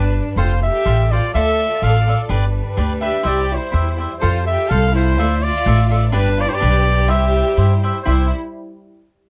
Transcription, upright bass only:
0, 0, Header, 1, 2, 480
1, 0, Start_track
1, 0, Key_signature, 0, "major"
1, 0, Tempo, 481155
1, 352, Time_signature, 2, 2, 24, 8
1, 9268, End_track
2, 0, Start_track
2, 0, Title_t, "Upright bass"
2, 0, Program_c, 0, 32
2, 0, Note_on_c, 0, 31, 85
2, 193, Note_off_c, 0, 31, 0
2, 360, Note_on_c, 0, 29, 80
2, 677, Note_off_c, 0, 29, 0
2, 854, Note_on_c, 0, 33, 94
2, 1165, Note_off_c, 0, 33, 0
2, 1339, Note_on_c, 0, 38, 80
2, 1647, Note_off_c, 0, 38, 0
2, 1815, Note_on_c, 0, 33, 81
2, 2123, Note_off_c, 0, 33, 0
2, 2289, Note_on_c, 0, 31, 75
2, 2596, Note_off_c, 0, 31, 0
2, 2766, Note_on_c, 0, 38, 92
2, 3073, Note_off_c, 0, 38, 0
2, 3242, Note_on_c, 0, 36, 74
2, 3553, Note_off_c, 0, 36, 0
2, 3726, Note_on_c, 0, 40, 97
2, 4039, Note_off_c, 0, 40, 0
2, 4219, Note_on_c, 0, 41, 95
2, 4529, Note_off_c, 0, 41, 0
2, 4696, Note_on_c, 0, 36, 103
2, 5180, Note_off_c, 0, 36, 0
2, 5180, Note_on_c, 0, 38, 88
2, 5486, Note_off_c, 0, 38, 0
2, 5646, Note_on_c, 0, 33, 98
2, 6121, Note_off_c, 0, 33, 0
2, 6121, Note_on_c, 0, 31, 91
2, 6430, Note_off_c, 0, 31, 0
2, 6607, Note_on_c, 0, 35, 96
2, 7087, Note_off_c, 0, 35, 0
2, 7087, Note_on_c, 0, 36, 85
2, 7395, Note_off_c, 0, 36, 0
2, 7556, Note_on_c, 0, 43, 85
2, 7870, Note_off_c, 0, 43, 0
2, 8047, Note_on_c, 0, 36, 82
2, 8276, Note_off_c, 0, 36, 0
2, 9268, End_track
0, 0, End_of_file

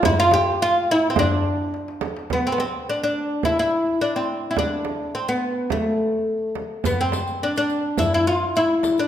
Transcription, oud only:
0, 0, Header, 1, 2, 480
1, 0, Start_track
1, 0, Tempo, 567644
1, 33, Time_signature, 4, 2, 24, 8
1, 7676, End_track
2, 0, Start_track
2, 0, Title_t, "Oud"
2, 0, Program_c, 0, 24
2, 43, Note_on_c, 0, 64, 91
2, 161, Note_off_c, 0, 64, 0
2, 166, Note_on_c, 0, 65, 91
2, 281, Note_off_c, 0, 65, 0
2, 284, Note_on_c, 0, 67, 88
2, 523, Note_off_c, 0, 67, 0
2, 526, Note_on_c, 0, 65, 92
2, 766, Note_off_c, 0, 65, 0
2, 772, Note_on_c, 0, 64, 91
2, 927, Note_off_c, 0, 64, 0
2, 930, Note_on_c, 0, 60, 61
2, 991, Note_off_c, 0, 60, 0
2, 1005, Note_on_c, 0, 62, 83
2, 1445, Note_off_c, 0, 62, 0
2, 1968, Note_on_c, 0, 59, 70
2, 2083, Note_off_c, 0, 59, 0
2, 2086, Note_on_c, 0, 60, 66
2, 2133, Note_on_c, 0, 59, 56
2, 2139, Note_off_c, 0, 60, 0
2, 2191, Note_off_c, 0, 59, 0
2, 2197, Note_on_c, 0, 60, 67
2, 2442, Note_off_c, 0, 60, 0
2, 2448, Note_on_c, 0, 62, 71
2, 2556, Note_off_c, 0, 62, 0
2, 2566, Note_on_c, 0, 62, 74
2, 2914, Note_off_c, 0, 62, 0
2, 2917, Note_on_c, 0, 64, 77
2, 3028, Note_off_c, 0, 64, 0
2, 3039, Note_on_c, 0, 64, 83
2, 3391, Note_off_c, 0, 64, 0
2, 3394, Note_on_c, 0, 62, 70
2, 3514, Note_off_c, 0, 62, 0
2, 3517, Note_on_c, 0, 60, 65
2, 3807, Note_off_c, 0, 60, 0
2, 3811, Note_on_c, 0, 64, 54
2, 3871, Note_off_c, 0, 64, 0
2, 3878, Note_on_c, 0, 62, 75
2, 4350, Note_off_c, 0, 62, 0
2, 4353, Note_on_c, 0, 60, 65
2, 4464, Note_off_c, 0, 60, 0
2, 4469, Note_on_c, 0, 59, 71
2, 4805, Note_off_c, 0, 59, 0
2, 4835, Note_on_c, 0, 57, 56
2, 5520, Note_off_c, 0, 57, 0
2, 5801, Note_on_c, 0, 59, 69
2, 5920, Note_off_c, 0, 59, 0
2, 5925, Note_on_c, 0, 60, 70
2, 6282, Note_off_c, 0, 60, 0
2, 6285, Note_on_c, 0, 62, 74
2, 6396, Note_off_c, 0, 62, 0
2, 6406, Note_on_c, 0, 62, 78
2, 6751, Note_off_c, 0, 62, 0
2, 6755, Note_on_c, 0, 64, 79
2, 6865, Note_off_c, 0, 64, 0
2, 6886, Note_on_c, 0, 64, 77
2, 6992, Note_off_c, 0, 64, 0
2, 6995, Note_on_c, 0, 65, 80
2, 7240, Note_off_c, 0, 65, 0
2, 7243, Note_on_c, 0, 64, 82
2, 7602, Note_off_c, 0, 64, 0
2, 7606, Note_on_c, 0, 62, 68
2, 7676, Note_off_c, 0, 62, 0
2, 7676, End_track
0, 0, End_of_file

